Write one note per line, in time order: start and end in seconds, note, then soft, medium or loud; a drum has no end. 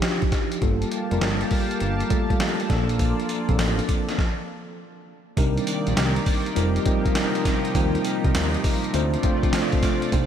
0.00 0.64 F3 medium
0.00 0.64 D4 medium
0.00 0.65 D#4 medium
0.00 0.62 F4 medium
0.00 0.65 F#4 medium
0.00 0.64 G4 loud
0.00 snare loud
0.00 closed hi-hat medium
0.22 kick loud
0.22 closed hi-hat soft
0.32 kick loud
0.32 snare medium
0.32 closed hi-hat medium
0.52 closed hi-hat medium
0.61 0.84 G1 loud
0.61 0.93 G3 medium
0.61 2.68 A#3 medium
0.61 0.93 A#3 medium
0.61 0.93 F4 medium
0.61 2.68 G4 medium
0.61 0.93 A4 medium
0.61 2.68 F5 medium
0.61 4.15 A5 medium
0.61 kick loud
0.61 closed hi-hat medium
0.82 closed hi-hat medium
0.91 closed hi-hat medium
1.11 1.19 F1 loud
1.11 1.79 G3 medium
1.11 1.79 A#3 medium
1.11 1.79 F4 medium
1.11 1.79 A#4 medium
1.11 closed hi-hat medium
1.21 1.44 G1 loud
1.21 snare loud
1.21 closed hi-hat medium
1.41 closed hi-hat medium
1.51 kick loud
1.51 open hi-hat medium
1.71 closed hi-hat medium
1.80 2.03 G1 loud
1.80 closed hi-hat medium
2.00 closed hi-hat medium
2.09 2.69 G3 medium
2.09 2.19 A3 medium
2.09 2.70 F4 medium
2.09 2.69 A4 medium
2.09 kick loud
2.09 closed hi-hat medium
2.16 2.68 A#3 medium
2.30 kick loud
2.30 closed hi-hat medium
2.40 snare loud
2.40 closed hi-hat medium
2.60 closed hi-hat soft
2.69 3.14 A#1 loud
2.69 3.29 F3 medium
2.69 3.29 A#3 medium
2.69 4.17 A#3 medium
2.69 3.29 D4 loud
2.69 4.17 F4 medium
2.69 3.29 A4 loud
2.69 4.17 D5 medium
2.69 kick loud
2.69 snare medium
2.69 closed hi-hat medium
2.89 closed hi-hat medium
2.99 kick loud
2.99 closed hi-hat medium
2.99 tambourine medium
3.20 closed hi-hat soft
3.29 closed hi-hat medium
3.29 tambourine medium
3.49 3.56 A#1 medium
3.49 4.16 F3 medium
3.49 4.17 A#3 medium
3.49 3.54 C4 medium
3.49 4.17 A4 medium
3.49 kick medium
3.49 closed hi-hat medium
3.56 3.81 A1 loud
3.56 4.20 D4 medium
3.56 snare loud
3.56 closed hi-hat medium
3.56 tambourine medium
3.79 closed hi-hat medium
3.89 kick medium
3.89 closed hi-hat medium
3.89 tambourine medium
4.09 snare medium
4.09 closed hi-hat medium
4.18 kick loud
4.18 snare medium
5.37 5.59 C2 loud
5.37 10.26 C3 medium
5.37 6.55 D#3 medium
5.37 6.21 G3 medium
5.37 8.90 A#3 medium
5.37 6.21 C4 medium
5.37 6.21 D4 medium
5.37 6.22 D#4 medium
5.37 8.91 G4 medium
5.37 6.22 A#4 loud
5.37 6.55 D5 medium
5.37 kick loud
5.37 closed hi-hat medium
5.37 tambourine medium
5.57 closed hi-hat medium
5.67 closed hi-hat medium
5.67 tambourine medium
5.87 5.94 A#1 medium
5.87 closed hi-hat medium
5.97 6.19 C2 medium
5.97 snare loud
5.97 closed hi-hat medium
5.97 tambourine medium
6.16 closed hi-hat medium
6.26 kick loud
6.26 open hi-hat medium
6.26 tambourine medium
6.46 closed hi-hat medium
6.55 6.79 F1 loud
6.55 8.91 F3 medium
6.55 6.79 G3 loud
6.55 6.80 C4 medium
6.55 6.80 D#4 medium
6.55 8.92 D#4 medium
6.55 6.80 F4 medium
6.55 6.80 A#4 loud
6.55 closed hi-hat medium
6.55 tambourine medium
6.76 closed hi-hat medium
6.85 7.47 G3 medium
6.85 7.48 C4 medium
6.85 7.48 D#4 medium
6.85 7.48 F4 medium
6.85 7.48 A#4 medium
6.85 kick loud
6.85 closed hi-hat medium
7.05 kick loud
7.05 closed hi-hat medium
7.15 snare loud
7.15 closed hi-hat medium
7.15 tambourine medium
7.35 closed hi-hat medium
7.45 kick medium
7.45 snare medium
7.45 closed hi-hat medium
7.45 tambourine medium
7.65 closed hi-hat medium
7.75 7.97 D#2 loud
7.75 8.59 G3 medium
7.75 8.59 C4 medium
7.75 8.59 D#4 medium
7.75 8.59 F4 medium
7.75 8.60 A#4 medium
7.75 kick loud
7.75 closed hi-hat medium
7.75 tambourine medium
7.95 closed hi-hat medium
8.04 closed hi-hat medium
8.04 tambourine medium
8.24 8.32 C2 loud
8.24 kick medium
8.24 closed hi-hat medium
8.35 8.57 D#2 loud
8.35 snare loud
8.35 closed hi-hat medium
8.35 tambourine medium
8.54 closed hi-hat medium
8.64 kick loud
8.64 open hi-hat medium
8.64 tambourine medium
8.84 closed hi-hat medium
8.93 9.16 D2 loud
8.93 10.12 F3 medium
8.93 9.17 A3 medium
8.93 10.12 A3 medium
8.93 9.17 C4 medium
8.93 9.17 D4 medium
8.93 9.18 F4 medium
8.93 10.12 F4 medium
8.93 9.18 C5 loud
8.93 10.26 D5 medium
8.93 closed hi-hat medium
8.93 tambourine medium
9.14 closed hi-hat medium
9.23 9.85 A3 medium
9.23 9.85 C4 medium
9.23 9.85 D4 medium
9.23 9.86 F4 medium
9.23 9.86 C5 medium
9.23 kick loud
9.23 closed hi-hat medium
9.43 kick loud
9.43 closed hi-hat medium
9.53 snare loud
9.53 closed hi-hat medium
9.53 tambourine medium
9.72 kick loud
9.72 closed hi-hat soft
9.83 kick loud
9.83 snare medium
9.83 closed hi-hat medium
9.83 tambourine medium
10.02 closed hi-hat medium
10.12 10.26 C2 loud
10.12 10.26 D#3 medium
10.12 10.26 A#3 medium
10.12 10.26 D4 medium
10.12 10.26 D#4 medium
10.12 10.26 G4 medium
10.12 10.26 C5 loud
10.12 kick loud
10.12 closed hi-hat medium
10.12 tambourine medium